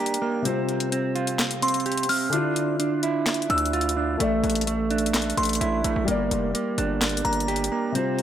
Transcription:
Already playing: G3 A#3 D4 G4 A#4 D5
0.00 G4
0.06 closed hi-hat
0.14 closed hi-hat
0.22 A#3
0.42 C3 G3 C4 F4, closed hi-hat
0.48 C5
0.69 closed hi-hat
0.80 closed hi-hat
0.92 C4, closed hi-hat
1.15 F4, closed hi-hat
1.27 closed hi-hat
1.39 snare, clap, closed hi-hat
1.51 closed hi-hat
1.62 C4 C6, closed hi-hat
1.68 closed hi-hat
1.74 closed hi-hat
1.80 closed hi-hat
1.86 G4, closed hi-hat
1.92 closed hi-hat
1.98 closed hi-hat
2.03 closed hi-hat
2.09 C4 F6, open hi-hat
2.30 D3 D4 E4, closed hi-hat
2.35 F4
2.56 closed hi-hat
2.80 D4, closed hi-hat
3.03 E4, closed hi-hat
3.26 snare, clap, closed hi-hat
3.34 closed hi-hat
3.42 closed hi-hat
3.50 D2 D4 E6, closed hi-hat
3.58 closed hi-hat
3.66 closed hi-hat
3.73 F4, closed hi-hat
3.81 closed hi-hat
3.89 closed hi-hat
3.97 D4
4.17 A1 A3 A4 D5, closed hi-hat
4.23 E5
4.43 A1, closed hi-hat
4.50 closed hi-hat
4.55 closed hi-hat
4.61 closed hi-hat
4.67 A3, closed hi-hat
4.91 D4, closed hi-hat
4.98 closed hi-hat
5.06 closed hi-hat
5.14 snare, clap, closed hi-hat
5.22 closed hi-hat
5.30 closed hi-hat
5.37 A1 A3 C6, closed hi-hat
5.43 closed hi-hat
5.45 closed hi-hat
5.49 closed hi-hat
5.53 closed hi-hat
5.55 closed hi-hat
5.61 A1 E4, closed hi-hat
5.84 A1 A3, closed hi-hat
5.96 A1
6.05 G1 G3 A#3 G4 A#4, closed hi-hat
6.11 D5
6.31 F1, closed hi-hat
6.55 A#3, closed hi-hat
6.78 G1 D4, closed hi-hat
7.01 snare, clap, closed hi-hat
7.09 closed hi-hat
7.17 closed hi-hat
7.25 G1 A#3 A#5, closed hi-hat
7.33 closed hi-hat
7.40 closed hi-hat
7.48 G4, closed hi-hat
7.56 closed hi-hat
7.64 closed hi-hat
7.72 A#3
7.92 C3 G3 C4 F4, closed hi-hat
7.98 C5
8.19 closed hi-hat

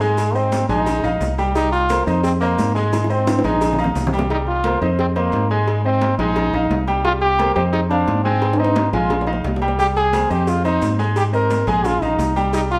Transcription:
Already playing: G#2
0.01 G#3 G#4 G#5, high conga, maracas
0.18 cowbell, high conga, low agogo, maracas
0.35 C4 C5 D#5, high conga, maracas
0.52 cowbell, high conga, low agogo, maracas
0.69 A#1 G#3 D#4 G#4 G#5, cowbell, high conga, maracas
0.86 cowbell, high conga, low conga, low agogo, maracas
1.04 A#1 D#4 D#5 F5, high conga, low conga, low agogo, maracas
1.21 C2, cowbell, high conga, low timbale, maracas
1.38 G3 G4 G5, high conga, low agogo, maracas
1.55 G3 D#4 G4 G5, cowbell, low agogo, maracas
1.72 F4, high conga, maracas
1.89 A#3 A#4 C5, cowbell, high conga, low agogo, maracas
2.07 F2 C4 D#4 C5 D#5, high conga, low agogo, maracas
2.24 C4, cowbell, high conga, maracas
2.41 A#3 C4 C5 D#5, high conga, low agogo, maracas
2.58 G#2, cowbell, high conga, low timbale, low agogo, maracas
2.75 G#3 G#4 G#5, maracas
2.93 cowbell, high bongo, high conga, low agogo, maracas
3.04 high bongo
3.10 C4 C5 D#5, high conga, maracas
3.27 cowbell, high bongo, high conga, high timbale, low agogo, maracas
3.39 high bongo, high timbale
3.44 A#1 G#3 D#4 G#4 G#5, cowbell, high conga, maracas
3.50 high timbale
3.61 cowbell, high conga, low conga, low agogo, maracas
3.73 low bongo, low timbale
3.79 D#4 D#5 F5, high conga, low conga, low agogo, maracas
3.84 low bongo, low timbale
3.95 C2, cowbell, high conga, low timbale, maracas
4.07 low bongo
4.13 G3 G4 G5, high conga, low agogo, maracas
4.19 low bongo, low timbale
4.30 G3 D#4 G4 G5, cowbell, high conga, low agogo
4.47 F4, high conga
4.64 A#3 A#4 C5, cowbell, high conga, low agogo
4.81 F2 C4 D#4 C5 D#5, high conga, low agogo
4.99 C4, cowbell, high conga
5.15 A#3 C4 C5 D#5, high conga, low agogo
5.32 G#2, cowbell, high conga, low agogo
5.50 G#3 G#4 G#5, high conga
5.68 cowbell, low agogo
5.84 C4 C5 D#5, high conga
6.01 cowbell, high conga, low agogo
6.18 A#1 G#3 D#4 G#4 G#5, cowbell, high conga
6.36 cowbell, high conga, low conga, low agogo
6.53 A#1 D#4 D#5 F5, high conga, low conga, low agogo
6.70 C2, cowbell, high conga, low timbale
6.88 G3 G4 G5, high conga, low agogo
7.04 G3 F4 G4 G5, cowbell, high conga, low agogo
7.21 G4, high conga
7.39 A#3 A#4 C5, cowbell, high conga, low agogo
7.55 F2 C4 G4 C5 D#5, high conga, low agogo
7.73 D#4, cowbell, high conga
7.90 C4 D4 C5 F5, high conga, low agogo
8.07 G#2, cowbell, high conga, low agogo
8.24 G#3 C4 G#4 G#5, high conga
8.42 cowbell, high timbale, low agogo
8.53 high timbale
8.58 C4 D#4 C5 D#5, high conga
8.65 high timbale
8.76 cowbell, high conga, low timbale, low agogo
8.87 high timbale
8.93 A#1 G#3 F4 G#4 G#5, cowbell, high conga
9.10 cowbell, high conga, low conga, low timbale, low agogo
9.21 low timbale
9.27 D#4 D#5 F5, high conga, low agogo
9.33 low timbale
9.44 C2, cowbell, high conga, low timbale
9.56 low timbale
9.62 G3 G4 G5, high conga, low agogo
9.68 low timbale
9.79 G3 G4 G5, cowbell, high conga, low agogo, maracas
9.96 G#4, high conga, maracas
10.13 A#3 A#4 C5, cowbell, high conga, low agogo, maracas
10.30 F2 C4 G4 C5 D#5, high conga, low agogo, maracas
10.47 F4, cowbell, high conga, maracas
10.64 C4 D#4 C5 D#5, high conga, low agogo, maracas
10.82 G#2, cowbell, high conga, low timbale, low agogo, maracas
10.99 G#3 G#4 G#5, high conga, maracas
11.16 G4, cowbell, high conga, low agogo, maracas
11.33 C4 A#4 C5 D#5, high conga, maracas
11.50 cowbell, high conga, low agogo, maracas
11.67 A#1 G#3 G#4 G#5, cowbell, high conga, maracas
11.84 F4, cowbell, high conga, low conga, low agogo, maracas
12.02 A#1 D#4 D#5 F5, high conga, low conga, low agogo, maracas
12.19 C2, cowbell, high conga, maracas
12.36 G3 G4 G5, high conga, low agogo, maracas
12.53 G3 D#4 G4 G5, cowbell, high conga, low agogo, maracas
12.71 F4, high conga, maracas

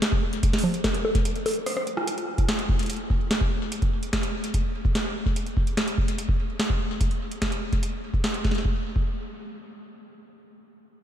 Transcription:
0.02 snare, closed hi-hat
0.12 kick
0.33 closed hi-hat
0.43 kick, closed hi-hat
0.53 snare, closed hi-hat
0.59 open hi-hat
0.64 low conga
0.74 closed hi-hat
0.84 kick, snare, closed hi-hat, high bongo
0.94 closed hi-hat
1.05 high bongo
1.15 kick, closed hi-hat
1.25 closed hi-hat
1.36 closed hi-hat
1.46 open hi-hat, high bongo
1.48 open hi-hat
1.51 open hi-hat
1.54 open hi-hat
1.66 cross-stick, open hi-hat
1.77 cross-stick
1.87 closed hi-hat
1.97 cross-stick
2.07 closed hi-hat
2.18 closed hi-hat
2.38 kick, closed hi-hat
2.49 snare, closed hi-hat
2.59 closed hi-hat
2.69 kick
2.79 closed hi-hat
2.83 closed hi-hat
2.86 closed hi-hat
2.90 closed hi-hat
2.96 closed hi-hat
3.10 kick
3.31 snare, closed hi-hat
3.41 kick
3.72 closed hi-hat
3.82 kick, closed hi-hat
4.03 closed hi-hat
4.13 kick, snare, closed hi-hat
4.23 closed hi-hat
4.44 closed hi-hat
4.54 kick, closed hi-hat
4.85 kick
4.95 snare, closed hi-hat
5.26 kick
5.36 closed hi-hat
5.46 closed hi-hat
5.57 kick
5.67 closed hi-hat
5.77 snare, closed hi-hat
5.88 closed hi-hat
5.98 kick
6.08 closed hi-hat
6.18 closed hi-hat
6.29 kick
6.60 snare, closed hi-hat
6.70 kick
7.01 kick, closed hi-hat
7.11 closed hi-hat
7.31 closed hi-hat
7.42 kick, snare, closed hi-hat
7.52 closed hi-hat
7.73 kick, closed hi-hat
7.83 closed hi-hat
8.14 kick
8.24 snare, closed hi-hat
8.34 closed hi-hat
8.44 kick, snare
8.51 snare, closed hi-hat
8.58 snare
8.65 kick
8.96 kick

